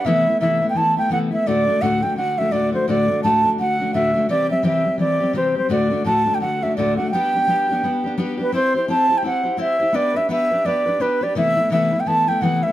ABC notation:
X:1
M:4/4
L:1/16
Q:"Swing" 1/4=170
K:G
V:1 name="Flute"
e4 e3 g a2 g2 f2 e2 | d4 f2 g2 f2 e2 d2 c2 | d4 a3 z f4 e4 | d2 e2 e4 d4 c2 c2 |
d4 a3 g f2 e2 d2 f2 | g12 z2 B2 | c2 c2 a3 g f4 e4 | d2 e2 e4 d4 B2 d2 |
e4 e3 g a2 g2 f2 e2 |]
V:2 name="Steel-string acoustic guitar"
[C,E,A,B,E]2 [A,B,E]2 [C,E,A,B,E]2 [A,B,E]2 [E,A,B,E]2 [A,B,E]2 [C,E,A,B,E]2 [A,B,E]2 | [D,,A,,D,A,DF]2 [D,A,DF]2 [D,,A,,D,A,DF]2 [D,A,DF]2 [D,A,DF]2 [D,A,DF]2 [D,,A,,D,A,DF]2 [D,A,DF]2 | [D,,A,,D,A,DF]2 [D,A,DF]2 [D,,A,,D,A,DF]2 [D,A,DF]2 [D,A,DF]2 [D,A,DF]2 [D,,A,,D,A,DF]2 [D,A,DF]2 | [C,E,G,CG]2 [G,CG]2 [C,E,G,CG]2 [G,CG]2 [E,G,CG]2 [G,CG]2 [C,E,G,CG]2 [G,CG]2 |
[D,,A,,D,A,DF]2 [D,A,DF]2 [D,,A,,D,A,DF]2 [D,A,DF]2 [D,A,DF]2 [D,A,DF]2 [D,,A,,D,A,DF]2 [D,A,DF]2 | [G,B,DG]2 [B,DG]2 [G,B,DG]2 [B,DG]2 [G,B,DG]2 [B,DG]2 [G,B,DG]2 [B,DG]2 | [CEGc]2 [EGc]2 [CEGc]2 [EGc]2 [CEGc]2 [EGc]2 [CEGc]2 [EGc]2 | [B,DGB]2 [DGB]2 [B,DGB]2 [DGB]2 [B,DGB]2 [DGB]2 [B,DGB]2 [DGB]2 |
[C,E,A,B,E]2 [A,B,E]2 [C,E,A,B,E]2 [A,B,E]2 [E,A,B,E]2 [A,B,E]2 [C,E,A,B,E]2 [A,B,E]2 |]